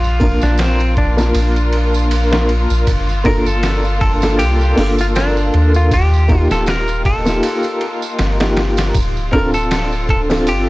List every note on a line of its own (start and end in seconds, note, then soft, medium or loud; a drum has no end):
0.00 0.39 A#1 medium
0.00 0.45 F4 loud
0.00 8.94 F4 medium
0.04 tambourine soft
0.20 1.13 A#3 medium
0.20 1.13 D4 medium
0.20 1.14 F4 medium
0.20 1.15 A#4 medium
0.20 kick medium
0.20 ride medium
0.20 triangle medium
0.41 1.32 A#1 loud
0.41 0.60 D4 medium
0.41 snare soft
0.41 tambourine medium
0.58 0.97 C4 medium
0.58 snare loud
0.58 ride medium
0.58 tambourine medium
0.80 ride soft
0.80 tambourine soft
0.97 2.08 D4 medium
0.97 kick medium
0.97 ride medium
1.17 2.27 A#3 medium
1.17 2.27 D4 medium
1.17 2.28 F4 medium
1.17 2.29 A#4 medium
1.17 snare soft
1.17 tambourine medium
1.17 triangle medium
1.34 2.67 A#1 medium
1.34 ride medium
1.34 tambourine medium
1.56 ride soft
1.56 tambourine soft
1.73 ride medium
1.94 tambourine medium
2.11 ride medium
2.11 tambourine medium
2.32 2.85 A#3 medium
2.32 2.85 D4 medium
2.32 2.85 F4 medium
2.32 2.86 A#4 medium
2.32 snare loud
2.32 tambourine soft
2.49 ride medium
2.70 2.85 A#1 medium
2.70 tambourine medium
2.87 kick loud
2.87 ride medium
2.87 tambourine medium
3.09 tambourine soft
3.24 4.17 A#3 medium
3.24 4.18 D4 medium
3.24 4.18 F4 medium
3.24 4.19 A4 medium
3.24 3.47 A#4 loud
3.24 kick medium
3.24 ride medium
3.24 triangle medium
3.46 4.00 A4 medium
3.46 tambourine medium
3.63 snare loud
3.63 ride medium
3.63 tambourine medium
3.85 tambourine soft
4.01 4.37 A4 medium
4.01 kick medium
4.01 ride medium
4.22 4.73 A#3 medium
4.22 4.74 D4 medium
4.22 4.74 F4 medium
4.22 4.74 A4 medium
4.22 snare medium
4.22 tambourine medium
4.22 triangle medium
4.39 4.74 C2 medium
4.39 4.94 G4 medium
4.39 ride medium
4.39 tambourine medium
4.61 tambourine soft
4.76 5.50 G1 loud
4.76 5.89 A#3 medium
4.76 5.89 D4 medium
4.76 5.90 F4 medium
4.76 open hi-hat medium
4.80 5.91 A4 loud
4.98 5.06 F4 medium
4.98 tambourine medium
4.98 triangle medium
5.15 5.76 D4 medium
5.15 snare loud
5.15 ride medium
5.15 tambourine medium
5.37 tambourine soft
5.54 6.47 D#2 medium
5.54 ride medium
5.75 5.93 F4 medium
5.75 tambourine medium
5.91 6.41 G4 loud
5.91 kick medium
5.91 ride medium
5.91 tambourine medium
6.13 tambourine soft
6.28 7.21 A#3 medium
6.28 7.21 D#4 medium
6.28 7.22 F4 medium
6.28 7.23 G4 medium
6.28 kick medium
6.28 ride medium
6.28 triangle medium
6.41 6.51 F4 loud
6.51 7.40 D#1 loud
6.51 6.69 A4 medium
6.51 snare medium
6.51 tambourine medium
6.66 7.06 A#4 medium
6.66 snare loud
6.66 ride medium
6.66 tambourine medium
6.88 ride soft
6.88 tambourine soft
7.05 8.15 A4 medium
7.05 kick medium
7.05 ride medium
7.25 8.35 A#3 medium
7.25 8.36 D#4 medium
7.25 8.36 F4 medium
7.25 snare soft
7.25 tambourine medium
7.25 triangle medium
7.29 8.37 G4 medium
7.43 ride medium
7.43 tambourine medium
7.63 ride soft
7.63 tambourine soft
7.81 ride medium
8.02 tambourine medium
8.19 8.92 G1 medium
8.19 snare loud
8.19 ride medium
8.19 tambourine medium
8.40 8.93 A#3 medium
8.40 8.93 D#4 medium
8.40 8.94 F4 medium
8.40 8.94 G4 medium
8.40 snare loud
8.40 ride medium
8.40 tambourine soft
8.57 snare medium
8.57 ride medium
8.77 snare loud
8.77 ride medium
8.77 tambourine medium
8.95 10.49 D1 loud
8.95 10.69 F4 medium
8.95 kick loud
8.95 ride medium
8.95 tambourine medium
9.17 tambourine soft
9.32 10.25 C4 medium
9.32 10.25 D4 medium
9.32 10.26 F4 medium
9.32 10.27 A4 medium
9.32 9.53 A#4 medium
9.32 kick medium
9.32 ride medium
9.32 triangle medium
9.54 10.09 A4 medium
9.54 tambourine medium
9.71 snare loud
9.71 ride medium
9.71 tambourine medium
9.93 tambourine soft
10.09 10.20 A4 medium
10.09 kick medium
10.09 ride medium
10.30 10.69 C4 medium
10.30 10.69 D4 medium
10.30 10.69 F4 medium
10.30 10.69 A4 loud
10.30 snare medium
10.30 tambourine medium
10.30 triangle medium
10.47 10.69 G1 medium
10.47 10.69 G4 loud
10.47 ride medium
10.47 tambourine medium